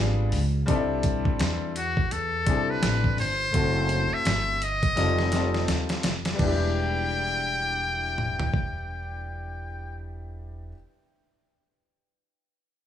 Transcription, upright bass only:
Already playing: G#1
0.32 C#2
0.68 C2
1.25 muted upright bass stroke
1.40 E2
2.12 E2
2.47 C2
2.82 A1
3.18 G1
3.54 F#1
4.12 muted upright bass stroke
4.26 G1
4.97 F1
5.68 D#2
6.04 F1
6.39 E1

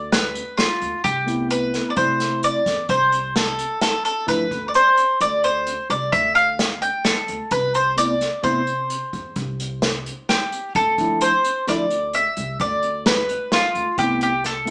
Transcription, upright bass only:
Already playing: D2
0.81 D2
1.05 C2
1.97 C3
2.66 E2
2.89 C2
4.28 D2
4.51 D2
5.21 D2
5.90 C2
6.13 D2
7.29 D2
7.51 C2
8.44 C3
9.13 E2
9.36 C2
10.75 D2
10.98 D2
11.68 D2
12.37 C2
12.60 D2
13.75 D2
13.98 C2

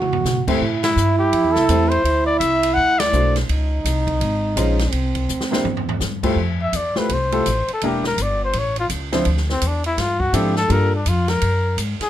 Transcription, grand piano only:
0.48 A3 C4 E4 G4 C5
1.69 A3 C4 E4 G4 C5
3.13 A3 D4 E4 F#4 C5
4.56 G#3 C#4 D#4 F4 C5
5.51 A#3 D4 E4 G4 C5
6.23 A3 E4 F4 G4 C5
6.96 A3 E4 F4 G4 C5
7.32 A3 E4 F4 G4 A4
7.83 A#3 D4 E4 G4 A#4
9.12 F3 C4 D4 E4 C5
10.33 F3 C4 D4 E4 A4
10.68 G3 A#3 D4 F4 A4

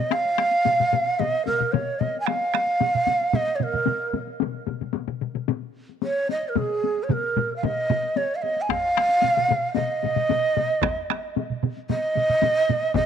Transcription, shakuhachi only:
Already playing: D#5
0.12 F5
1.19 D#5
1.47 A#4
1.72 C#5
1.99 D#5
2.20 G#5
2.26 F5
3.35 D#5
3.55 C#5
3.63 A#4
6.03 C#5
6.31 D#5
6.49 A#4
6.58 G#4
7.03 C#5
7.11 A#4
7.56 F5
7.64 D#5
8.17 C#5
8.35 F5
8.42 D#5
8.61 G#5
8.70 F5
9.74 D#5
11.90 D#5
12.95 D#5

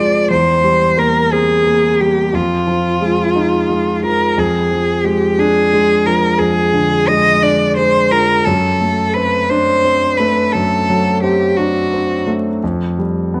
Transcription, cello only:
Already playing: D5
0.31 C5
0.99 A#4
1.32 G#4
2.01 G4
2.35 F4
4.05 A#4
4.38 G#4
5.05 G4
5.39 G#4
6.06 A#4
6.39 G#4
7.08 D#5
7.42 D5
7.76 C5
8.11 A#4
8.45 A4
9.14 B4
9.49 C5
10.17 B4
10.52 A4
11.23 G4
11.57 F#4

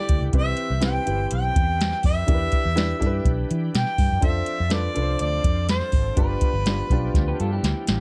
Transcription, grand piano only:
0.33 C4 E4 G4 B4
0.81 C4 E4 G4 B4
1.05 C4 E4 G4 B4
2.26 D4 E4 G4 A#4
2.34 B4
2.76 D4 E4 G4 B4
2.99 D4 E4 G4 A4
3.06 B4
4.21 D4 F4 A4 C5
4.70 D4 F4 A4 B4
4.94 D4 F4 A4 B4
5.02 C5
6.16 D4 F4 G4 B4
6.66 D4 F4 G4 B4
6.91 D4 F4 G4 B4

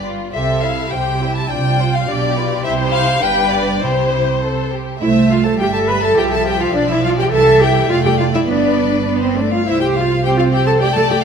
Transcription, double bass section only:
Already playing: G1
0.34 C2
0.93 C2
1.51 C2
2.08 B1
2.65 C2
3.23 G1
3.82 C2
5.01 C2
5.59 G1
6.17 C2
6.74 B1
7.32 C2
7.89 F1
8.48 G1
9.66 C2

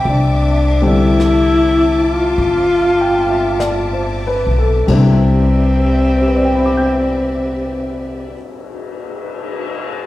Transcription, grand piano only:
Already playing: A4 B4 C5 D5 E5 G5
0.82 D3 G3 C4 D4 G4
3.01 G5
3.30 E5
3.60 D5
3.93 C5
4.27 B4
4.58 A4
4.87 C3 G3 C4 D4 E4
6.20 G4
6.28 B4
6.36 D5
6.45 G5
6.55 B5
6.66 D6
6.77 G6

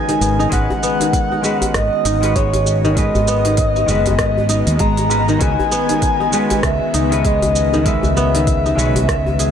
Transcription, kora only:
Already playing: G#3 B3 D#4
0.09 D#3
0.21 B3
0.39 D#4
0.52 G#3
0.83 B3
1.01 D#3
1.32 D#4
1.44 G#3
2.05 D#4
2.36 G#3
2.85 D#3
2.97 G#3
3.28 B3
3.46 D#3
3.76 D#4
3.88 G#3
4.49 D#4
4.80 G#3
5.29 D#3
5.41 G#3
5.72 B3
5.89 D#3
6.20 D#4
6.33 G#3
6.94 D#4
7.25 G#3
7.74 D#3
7.86 G#3
8.17 B3
8.35 D#3
8.66 D#4
8.78 G#3
9.39 G#4

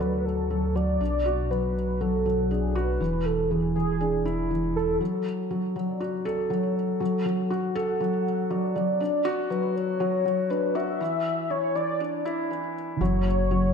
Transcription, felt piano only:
Already playing: F#4 A4
0.00 F#3
0.50 F#3
0.75 F#3
1.01 D4
1.26 F#4
1.51 F#3
2.01 F#3
2.26 F#3
2.51 D4
2.75 F#4
3.01 E3
3.51 E3
3.76 E3
4.01 D4
4.25 E4
4.51 E3
5.01 F#3
5.51 F#3
5.76 F#3
6.01 F#4
6.25 A4
6.50 F#3
7.00 F#3
7.25 F#3
7.50 F#4
7.75 A4
8.00 F#3
8.50 F#3
8.76 F#3
9.00 D4
9.25 F#4
9.50 F#3
10.00 F#3
10.25 F#3
10.50 D4
10.75 F#4
11.00 E3
11.50 E3
11.75 E3
12.00 D4
12.25 E4
12.51 E3
13.01 F#3
13.51 F#3

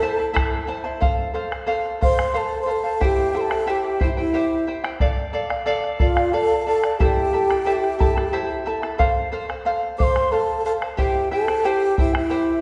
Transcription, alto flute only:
Already playing: A4
2.03 C5
2.36 A4
2.62 C5
2.72 A4
3.05 G4
3.37 A4
3.70 G4
4.04 E4
4.20 E4
6.00 F4
6.34 A4
6.67 A4
6.99 G4
9.98 C5
10.32 A4
10.65 A4
10.98 G4
11.33 A4
11.66 G4
12.00 E4
12.17 E4

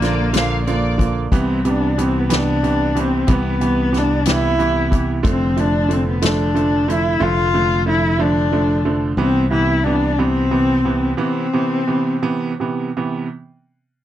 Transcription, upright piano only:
0.02 D3 F3 A#3
0.33 D3 F3 A#3
0.67 D3 F3 A#3
0.98 D3 F3 A#3
1.32 C3 E3 B3
1.65 C3 E3 B3
1.98 C3 E3 B3
2.29 C3 E3 B3
2.63 C3 E3 B3
2.95 C3 E3 B3
3.27 C3 E3 B3
3.61 C3 E3 B3
3.92 C3 E3 B3
4.26 C3 E3 B3
4.58 C3 E3 B3
4.90 C3 E3 B3
5.23 D3 F3 A3
5.57 D3 F3 A3
5.89 D3 F3 A3
6.22 D3 F3 A3
6.54 D3 F3 A3
6.88 D3 F3 A3
7.20 D3 F3 A3
7.54 D3 F3 A3
7.86 D3 F3 A3
8.19 D3 F3 A3
8.52 D3 F3 A3
8.85 D3 F3 A3
9.18 C3 E3 B3
9.51 C3 E3 B3
9.85 C3 E3 B3
10.18 C3 E3 B3
10.51 C3 E3 B3
10.85 C3 E3 B3
11.17 C3 E3 B3
11.53 C3 E3 B3
11.87 C3 E3 B3
12.22 C3 E3 B3
12.60 C3 E3 B3
12.97 C3 E3 B3

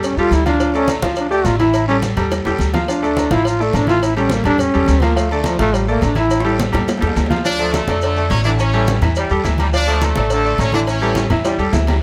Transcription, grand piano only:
Already playing: G3 G4 A4
0.18 G3 G4 A4
0.46 F3 F4 F5
0.60 F3 F4 F5
0.74 A3 A4 D5
1.02 F3 F4 F5
1.30 A3 A4 D5
1.60 E3 E4 E5
1.89 G3 G4 A4
2.17 G3 G4 A4
2.46 G3 G4 A4
2.73 F3 F4 F5
2.89 F3 F4 F5
3.03 A3 A4 D5
3.31 F3 F4 F5
3.60 A3 A4 D5
3.88 E3 E4 E5
4.17 G3 G4 A4
4.45 G3 G4 A4
4.74 G3 G4 A4
5.02 F3 F4 F5
5.16 F3 F4 F5
5.32 A3 A4 D5
5.59 F3 F4 F5
5.88 A3 A4 D5
6.15 E3 E4 E5
6.44 G3 G4 A4
6.72 G3 G4 A4
7.01 G3 G4 A4
7.30 F3 F4 F5
7.45 F3 F4 F5
7.59 A3 A4 D5
7.88 A3 A4 D5
8.17 A3 A4 D5
8.45 E3 E4 E5
8.74 G3 G4 A4
9.02 E3 E4 E5
9.30 G3 G4 A4
9.44 E3 E4 E5
9.73 F3 F4 F5
9.87 A3 A4 D5
10.16 A3 A4 D5
10.45 A3 A4 D5
10.74 E3 E4 E5
11.02 G3 G4 A4
11.31 E3 E4 E5
11.59 G3 G4 A4
11.72 E3 E4 E5

